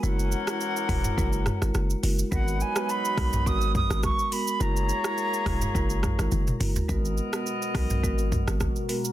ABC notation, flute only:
X:1
M:4/4
L:1/8
Q:"Swing 16ths" 1/4=105
K:G#m
V:1 name="Flute"
f6 z2 | f g b2 d' d' c' b | a6 z2 | z8 |]